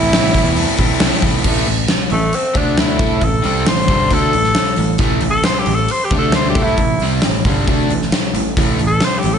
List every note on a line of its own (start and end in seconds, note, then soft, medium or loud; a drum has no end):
0.00 0.21 A1 medium
0.00 0.11 A2 loud
0.00 0.10 E3 loud
0.00 0.11 A3 medium
0.00 0.15 A3 loud
0.00 0.12 C4 medium
0.00 0.15 C4 loud
0.00 0.13 E4 medium
0.00 0.17 E4 loud
0.00 0.96 E4 loud
0.11 0.34 E3 medium
0.11 0.33 A3 medium
0.11 0.32 C4 medium
0.11 0.32 E4 medium
0.11 snare loud
0.11 open hi-hat medium
0.17 0.38 A3 medium
0.17 0.34 E4 medium
0.22 0.43 A1 medium
0.33 0.79 A2 medium
0.33 0.54 E3 medium
0.33 0.55 A3 medium
0.33 0.56 C4 medium
0.33 0.56 E4 loud
0.33 kick medium
0.33 open hi-hat medium
0.38 1.02 A3 medium
0.38 1.03 C4 medium
0.44 0.65 E2 medium
0.55 0.99 E3 medium
0.55 0.79 A3 medium
0.55 0.77 C4 medium
0.55 0.76 E4 medium
0.55 open hi-hat medium
0.78 0.89 A1 medium
0.78 1.00 A3 medium
0.78 1.01 C4 medium
0.78 1.02 E4 medium
0.78 kick medium
0.78 open hi-hat medium
1.00 1.10 C2 medium
1.00 1.44 A2 loud
1.00 1.23 E3 medium
1.00 1.22 A3 medium
1.00 1.22 C4 medium
1.00 1.21 E4 medium
1.00 snare loud
1.00 open hi-hat loud
1.22 1.33 A1 medium
1.22 1.44 A2 medium
1.22 1.44 E3 medium
1.22 1.44 A3 medium
1.22 1.44 C4 medium
1.22 1.43 E4 loud
1.22 kick medium
1.22 open hi-hat medium
1.44 1.65 A1 medium
1.44 1.67 A2 medium
1.44 1.67 E3 loud
1.44 1.67 A3 medium
1.44 kick loud
1.44 crash loud
1.66 1.87 A1 medium
1.66 1.85 A2 medium
1.66 1.85 E3 medium
1.66 open hi-hat medium
1.88 muted overdriven electric guitar stroke medium
1.88 snare loud
1.88 open hi-hat medium
2.10 2.31 A1 medium
2.10 2.28 A2 medium
2.10 2.28 E3 medium
2.10 2.37 A3 medium
2.10 open hi-hat medium
2.33 2.58 C4 medium
2.33 open hi-hat medium
2.54 2.97 D2 medium
2.54 2.98 D3 loud
2.54 2.96 A3 medium
2.54 2.99 D4 medium
2.54 2.80 D4 medium
2.54 kick medium
2.54 open hi-hat medium
2.78 3.25 E4 medium
2.78 snare loud
2.78 open hi-hat medium
2.98 3.20 A2 medium
2.98 3.20 A3 medium
2.98 3.21 E4 loud
2.98 3.21 A4 loud
2.98 kick loud
2.98 open hi-hat medium
3.21 3.43 A1 medium
3.21 3.39 A2 medium
3.21 3.39 E3 medium
3.21 3.66 A4 medium
3.21 kick medium
3.21 open hi-hat medium
3.42 3.65 C2 medium
3.42 3.64 C3 medium
3.42 3.65 G3 medium
3.42 3.65 C4 loud
3.42 open hi-hat soft
3.64 3.88 A1 medium
3.64 3.83 A2 medium
3.64 3.84 E3 medium
3.64 4.15 C5 medium
3.64 snare loud
3.64 open hi-hat medium
3.86 4.09 G1 loud
3.86 4.09 G2 medium
3.86 4.09 D3 loud
3.86 4.10 G3 loud
3.86 kick loud
3.86 open hi-hat medium
4.10 4.32 D2 medium
4.10 4.32 D3 medium
4.10 4.33 A3 medium
4.10 4.33 D4 medium
4.10 4.99 A4 loud
4.10 kick medium
4.10 open hi-hat medium
4.33 4.54 A1 medium
4.33 4.51 A2 medium
4.33 4.52 E3 medium
4.33 open hi-hat medium
4.44 snare soft
4.55 snare loud
4.55 open hi-hat medium
4.76 4.98 A1 medium
4.76 4.96 A2 medium
4.76 4.96 E3 medium
4.76 open hi-hat medium
4.98 5.20 A1 loud
4.98 5.22 A2 medium
4.98 5.22 E3 medium
4.98 5.22 A3 loud
4.98 kick loud
4.98 open hi-hat medium
5.21 5.43 A1 medium
5.21 5.40 A2 medium
5.21 5.41 E3 medium
5.21 open hi-hat medium
5.30 5.46 A4 loud
5.44 5.61 C5 medium
5.44 muted overdriven electric guitar stroke medium
5.44 snare loud
5.44 open hi-hat medium
5.59 5.76 G4 medium
5.66 5.87 A1 medium
5.66 5.85 A2 medium
5.66 5.85 E3 medium
5.66 open hi-hat medium
5.74 5.93 A4 medium
5.88 6.06 C5 medium
5.88 open hi-hat medium
6.05 6.18 G4 medium
6.11 6.53 D2 medium
6.11 6.55 D3 medium
6.11 6.56 A3 loud
6.11 6.56 D4 loud
6.11 kick loud
6.11 open hi-hat soft
6.18 6.33 A4 medium
6.32 6.48 C5 medium
6.32 snare loud
6.32 open hi-hat medium
6.49 6.64 G4 medium
6.55 6.76 A2 medium
6.55 6.78 A3 loud
6.55 6.78 E4 medium
6.55 6.79 A4 loud
6.55 kick loud
6.55 open hi-hat medium
6.63 7.06 E4 loud
6.63 snare soft
6.77 6.98 A1 medium
6.77 6.97 A2 medium
6.77 6.97 E3 medium
6.77 kick medium
6.77 open hi-hat medium
6.99 7.20 C2 medium
6.99 7.23 C3 medium
6.99 open hi-hat medium
7.03 7.24 G3 medium
7.03 7.24 C4 loud
7.22 7.43 A1 medium
7.22 7.42 A2 medium
7.22 7.42 E3 medium
7.22 snare loud
7.22 open hi-hat medium
7.45 7.66 G1 medium
7.45 7.68 G2 medium
7.45 7.67 D3 medium
7.45 7.68 G3 loud
7.45 kick loud
7.45 open hi-hat medium
7.68 7.88 D2 medium
7.68 7.90 D3 medium
7.68 7.90 A3 loud
7.68 7.90 D4 medium
7.68 kick loud
7.68 open hi-hat medium
7.89 8.10 A1 medium
7.89 8.08 A2 medium
7.89 8.09 E3 medium
7.89 open hi-hat medium
8.02 snare soft
8.12 snare loud
8.12 open hi-hat medium
8.33 8.55 A1 medium
8.33 8.53 A2 medium
8.33 8.53 E3 medium
8.33 open hi-hat medium
8.57 8.78 A1 medium
8.57 8.79 A2 medium
8.57 8.79 E3 medium
8.57 8.80 A3 loud
8.57 kick loud
8.57 open hi-hat medium
8.79 9.00 A1 medium
8.79 8.97 A2 medium
8.79 8.98 E3 medium
8.79 open hi-hat medium
8.87 9.06 A4 loud
9.00 9.20 C5 medium
9.00 muted overdriven electric guitar stroke medium
9.00 muted picked electric bass stroke soft
9.00 snare loud
9.00 open hi-hat medium
9.19 9.35 G4 medium
9.23 9.38 A1 medium
9.23 9.38 A2 medium
9.23 9.38 E3 medium
9.23 open hi-hat medium
9.33 9.38 A4 medium